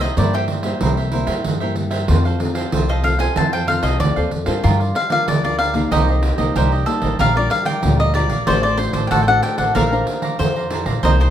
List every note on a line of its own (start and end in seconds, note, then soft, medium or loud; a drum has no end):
0.00 0.14 C3 medium
0.00 0.16 A#4 medium
0.00 0.16 C5 medium
0.00 0.17 D#5 medium
0.00 0.15 E5 medium
0.17 0.78 G2 medium
0.17 0.72 G2 medium
0.17 0.60 G3 medium
0.17 0.60 A#3 medium
0.17 0.32 E4 medium
0.17 0.61 E4 medium
0.17 0.33 A#4 medium
0.17 0.33 C5 medium
0.17 0.33 D5 medium
0.17 0.33 E5 medium
0.17 pandeiro medium
0.33 0.44 G4 medium
0.33 0.65 A#4 medium
0.33 0.64 C5 medium
0.33 0.63 E5 medium
0.33 pandeiro soft
0.48 pandeiro medium
0.63 1.07 G3 medium
0.63 1.07 A#3 medium
0.63 1.07 E4 medium
0.63 0.80 A#4 medium
0.63 0.80 C5 medium
0.63 0.79 E5 medium
0.63 pandeiro medium
0.81 1.22 C2 medium
0.81 1.42 C3 medium
0.81 0.96 E4 medium
0.81 0.96 A#4 medium
0.81 0.97 C5 medium
0.81 0.96 E5 medium
0.81 pandeiro medium
0.97 1.11 A#4 medium
0.97 1.12 C5 medium
0.97 1.12 E5 medium
0.97 pandeiro soft
1.12 1.56 G3 medium
1.12 1.56 A#3 medium
1.12 1.27 E4 medium
1.12 1.56 E4 medium
1.12 1.27 A#4 medium
1.12 1.27 C5 medium
1.12 1.25 E5 medium
1.12 pandeiro medium
1.27 1.42 G2 medium
1.27 1.59 A#4 medium
1.27 1.59 C5 medium
1.27 1.59 E5 medium
1.27 pandeiro medium
1.44 2.06 G2 medium
1.44 2.10 G2 medium
1.44 pandeiro medium
1.60 2.04 G3 medium
1.60 2.04 A#3 medium
1.60 2.05 E4 medium
1.60 1.75 A#4 medium
1.60 1.75 C5 medium
1.60 1.75 E5 medium
1.60 pandeiro soft
1.76 muted cavaquinho stroke soft
1.76 pandeiro medium
1.91 2.08 A#4 medium
1.91 2.07 C5 medium
1.91 2.06 E5 medium
1.91 pandeiro medium
2.08 2.63 F2 medium
2.08 2.70 F3 medium
2.08 2.36 C4 medium
2.08 2.23 F4 soft
2.08 2.36 F4 medium
2.08 2.24 A4 soft
2.08 2.36 A4 medium
2.08 2.24 C5 medium
2.08 2.24 F5 medium
2.08 pandeiro medium
2.25 2.40 A4 medium
2.25 2.40 C5 medium
2.25 2.40 F5 medium
2.25 pandeiro soft
2.40 2.67 C4 medium
2.40 2.67 F4 medium
2.40 2.68 A4 medium
2.40 muted cavaquinho stroke soft
2.40 pandeiro medium
2.55 2.71 A4 medium
2.55 2.71 C5 medium
2.55 2.71 F5 medium
2.55 pandeiro medium
2.72 3.27 C2 medium
2.72 3.33 C3 medium
2.72 2.99 C4 medium
2.72 2.87 F4 medium
2.72 2.99 F4 medium
2.72 3.00 A4 medium
2.72 2.88 A4 medium
2.72 2.88 C5 medium
2.72 2.88 F5 medium
2.72 pandeiro medium
2.89 3.19 A4 medium
2.89 3.19 C5 medium
2.89 3.05 D#5 medium
2.89 3.18 F5 medium
2.89 pandeiro soft
3.04 3.14 C4 medium
3.04 3.14 F4 medium
3.04 3.14 A4 medium
3.04 3.20 F5 medium
3.04 pandeiro medium
3.19 3.63 C4 medium
3.19 3.63 F4 medium
3.19 3.63 A4 medium
3.19 3.35 A4 medium
3.19 3.35 C5 medium
3.19 3.34 F5 medium
3.19 3.36 G#5 medium
3.19 pandeiro medium
3.36 3.77 F2 medium
3.36 3.97 F3 medium
3.36 3.51 F4 soft
3.36 3.51 A4 medium
3.36 3.52 C5 medium
3.36 3.52 F5 medium
3.36 3.52 A5 medium
3.36 pandeiro medium
3.53 3.67 A4 medium
3.53 3.67 C5 medium
3.53 3.67 F5 medium
3.53 3.67 G5 medium
3.53 pandeiro soft
3.67 3.98 C4 medium
3.67 3.82 F4 soft
3.67 3.98 F4 medium
3.67 3.83 A4 medium
3.67 3.99 A4 medium
3.67 3.82 C5 medium
3.67 3.84 F5 loud
3.67 3.81 F5 medium
3.67 pandeiro medium
3.83 3.97 C2 medium
3.83 4.15 A4 medium
3.83 4.15 C5 medium
3.83 3.99 D#5 medium
3.83 4.14 F5 medium
3.83 pandeiro medium
4.00 4.15 D2 medium
4.00 4.61 C3 medium
4.00 4.19 D5 medium
4.00 pandeiro medium
4.16 4.31 D#2 medium
4.16 4.43 C4 medium
4.16 4.43 F4 medium
4.16 4.44 A4 medium
4.16 4.30 A4 medium
4.16 4.31 C5 medium
4.16 4.31 F5 medium
4.16 pandeiro soft
4.31 4.46 F2 medium
4.31 muted cavaquinho stroke soft
4.31 pandeiro medium
4.46 4.62 G2 medium
4.46 4.90 D4 medium
4.46 4.90 F4 medium
4.46 4.63 A4 medium
4.46 4.90 A#4 medium
4.46 4.62 C5 medium
4.46 4.62 F5 medium
4.46 pandeiro medium
4.63 4.92 G2 medium
4.63 5.25 G3 medium
4.63 5.88 F4 medium
4.63 4.79 G4 medium
4.63 4.79 A#4 medium
4.63 4.79 D5 medium
4.63 4.79 F5 medium
4.63 pandeiro medium
4.80 4.94 A#4 soft
4.80 4.94 D5 soft
4.80 4.94 F5 medium
4.80 pandeiro soft
4.95 5.11 F5 loud
4.95 muted cavaquinho stroke soft
4.95 pandeiro medium
5.10 5.38 D4 medium
5.10 5.38 F4 medium
5.10 5.42 A#4 medium
5.10 5.39 A#4 medium
5.10 5.42 D5 medium
5.10 5.42 F5 medium
5.10 5.27 F5 medium
5.10 pandeiro medium
5.28 5.74 D2 medium
5.28 5.89 D3 medium
5.28 5.43 D5 medium
5.28 pandeiro medium
5.44 5.71 D4 medium
5.44 5.71 F4 medium
5.44 5.71 A#4 medium
5.44 5.58 A#4 soft
5.44 5.58 D5 soft
5.44 5.58 D5 medium
5.44 5.59 F5 soft
5.44 pandeiro soft
5.58 5.74 G4 soft
5.58 5.74 A#4 medium
5.58 5.74 D5 medium
5.58 5.89 F5 medium
5.58 5.72 F5 medium
5.58 pandeiro medium
5.74 5.89 C#2 medium
5.74 6.34 A#3 medium
5.74 6.34 D#4 medium
5.74 6.34 G4 medium
5.74 5.90 A#4 medium
5.74 5.90 D5 medium
5.74 5.89 F5 medium
5.74 pandeiro medium
5.91 6.32 C2 medium
5.91 6.52 C3 medium
5.91 6.06 D#4 medium
5.91 6.55 G4 medium
5.91 6.07 A#4 medium
5.91 6.07 C5 medium
5.91 6.84 D#5 medium
5.91 6.07 D#5 medium
5.91 pandeiro medium
6.08 6.22 A#4 soft
6.08 6.22 C5 soft
6.08 6.23 D#5 soft
6.08 pandeiro soft
6.23 muted cavaquinho stroke soft
6.23 pandeiro medium
6.38 6.53 C2 medium
6.38 6.82 A#3 medium
6.38 6.82 D#4 medium
6.38 6.82 G4 medium
6.38 6.55 A#4 medium
6.38 6.54 C5 medium
6.38 6.54 D#5 medium
6.38 pandeiro medium
6.56 6.83 C2 medium
6.56 7.17 G3 medium
6.56 6.71 D#4 medium
6.56 6.89 G4 medium
6.56 6.71 A#4 medium
6.56 6.71 C5 medium
6.56 6.71 D#5 medium
6.56 pandeiro medium
6.72 7.03 A#4 soft
6.72 7.02 C5 soft
6.72 7.01 D#5 medium
6.72 pandeiro soft
6.86 7.14 A#3 medium
6.86 7.14 D#4 medium
6.86 7.15 G4 medium
6.86 7.19 A4 medium
6.86 pandeiro medium
7.02 7.17 A1 medium
7.02 7.19 A#4 soft
7.02 7.18 C5 soft
7.02 7.18 D#5 medium
7.02 pandeiro medium
7.19 7.47 A#1 medium
7.19 7.81 A#2 medium
7.19 7.30 G3 medium
7.19 7.30 D4 medium
7.19 7.30 F4 medium
7.19 7.34 G4 medium
7.19 8.47 A#4 medium
7.19 7.34 A#4 medium
7.19 7.35 D5 medium
7.19 7.36 F5 loud
7.19 7.34 F5 medium
7.19 pandeiro medium
7.35 7.79 G3 medium
7.35 7.79 D4 medium
7.35 7.80 F4 medium
7.35 7.50 A#4 soft
7.35 7.50 D5 soft
7.35 7.50 D5 medium
7.35 7.50 F5 soft
7.35 pandeiro soft
7.50 7.66 F5 medium
7.50 muted cavaquinho stroke soft
7.50 pandeiro medium
7.65 7.98 A#4 medium
7.65 7.98 D5 medium
7.65 7.97 F5 medium
7.65 7.99 G5 loud
7.65 pandeiro medium
7.83 8.30 D2 medium
7.83 8.45 A#2 medium
7.83 8.11 G3 medium
7.83 8.11 D4 medium
7.83 8.11 F4 medium
7.83 pandeiro medium
7.99 8.14 A#4 soft
7.99 8.15 D5 soft
7.99 8.14 D#5 medium
7.99 8.15 F5 soft
7.99 pandeiro soft
8.14 8.34 G3 medium
8.14 8.34 D4 medium
8.14 8.34 F4 medium
8.14 8.30 G4 soft
8.14 8.30 A#4 medium
8.14 8.45 D5 medium
8.14 8.30 D5 medium
8.14 8.28 F5 medium
8.14 pandeiro medium
8.30 8.44 A#1 loud
8.30 8.46 A#4 medium
8.30 8.46 D5 medium
8.30 8.45 F5 medium
8.30 pandeiro medium
8.47 8.88 A1 medium
8.47 9.08 A3 medium
8.47 8.74 D4 medium
8.47 8.62 F#4 medium
8.47 8.74 F#4 medium
8.47 8.62 A4 medium
8.47 9.13 C5 loud
8.47 8.75 C5 medium
8.47 8.63 C5 medium
8.47 8.62 D5 loud
8.47 8.63 D5 medium
8.47 pandeiro medium
8.63 8.78 A4 soft
8.63 8.79 C5 soft
8.63 8.78 D5 medium
8.63 8.78 D5 soft
8.63 pandeiro soft
8.77 9.22 D4 medium
8.77 9.22 F#4 medium
8.77 8.92 C5 medium
8.77 9.22 C5 medium
8.77 muted cavaquinho stroke soft
8.77 pandeiro medium
8.93 9.08 A1 medium
8.93 9.11 A4 medium
8.93 9.06 C5 medium
8.93 9.10 C5 medium
8.93 9.10 D5 medium
8.93 pandeiro medium
9.07 9.22 F#5 medium
9.07 9.10 G5 medium
9.07 pandeiro medium
9.11 9.39 A1 medium
9.11 9.72 A3 medium
9.11 9.26 F#4 medium
9.11 9.77 A4 medium
9.11 9.26 A4 medium
9.11 9.27 C5 medium
9.11 9.26 D5 medium
9.23 9.27 G5 medium
9.27 9.73 D4 medium
9.27 9.73 F#4 medium
9.27 9.58 A4 soft
9.27 9.73 C5 medium
9.27 9.58 C5 soft
9.27 9.57 D5 medium
9.27 9.43 F#5 loud
9.27 pandeiro soft
9.43 9.58 G5 loud
9.43 pandeiro medium
9.58 9.72 A1 medium
9.58 9.74 A4 soft
9.58 9.74 C5 soft
9.58 9.73 D5 medium
9.58 9.75 F#5 medium
9.58 pandeiro medium
9.75 10.03 A#1 loud
9.75 10.36 A#3 medium
9.75 9.85 D4 medium
9.75 9.85 A4 medium
9.75 9.90 A4 medium
9.75 10.39 A#4 medium
9.75 9.85 C5 medium
9.75 9.91 D5 medium
9.75 10.67 F5 medium
9.75 9.91 F5 medium
9.75 9.91 A#5 medium
9.75 pandeiro medium
9.92 10.34 D4 medium
9.92 10.35 C5 medium
9.92 10.07 D5 soft
9.92 10.07 F5 soft
9.92 10.06 A#5 medium
9.92 pandeiro soft
10.07 muted cavaquinho stroke soft
10.07 pandeiro medium
10.22 10.54 D5 medium
10.22 10.54 F5 medium
10.22 10.54 A#5 medium
10.22 pandeiro medium
10.39 10.87 F2 medium
10.39 11.00 F3 medium
10.39 10.66 D4 medium
10.39 10.66 A4 medium
10.39 11.02 C5 loud
10.39 10.66 C5 medium
10.39 pandeiro medium
10.56 10.70 D5 soft
10.56 10.71 F5 soft
10.56 10.70 A#5 soft
10.56 pandeiro soft
10.70 10.98 D4 medium
10.70 10.86 A4 medium
10.70 10.98 A4 medium
10.70 10.98 C5 medium
10.70 10.86 D5 medium
10.70 10.86 F5 medium
10.70 10.85 A#5 medium
10.70 pandeiro medium
10.86 11.00 A#1 loud
10.86 11.02 D5 medium
10.86 11.02 F5 medium
10.86 11.01 A#5 medium
10.86 pandeiro medium
11.03 11.30 C2 medium
11.03 11.30 C3 medium
11.03 11.30 A#3 medium
11.03 11.18 D#4 medium
11.03 11.30 D#4 medium
11.03 11.30 G4 medium
11.03 11.18 A#4 medium
11.03 11.30 C5 loud
11.03 11.19 C5 medium
11.03 11.10 D#5 loud
11.03 11.19 D#5 medium
11.03 pandeiro medium
11.20 11.30 A#4 soft
11.20 11.30 C5 medium
11.20 11.30 C5 soft
11.20 11.30 D#5 soft
11.20 pandeiro soft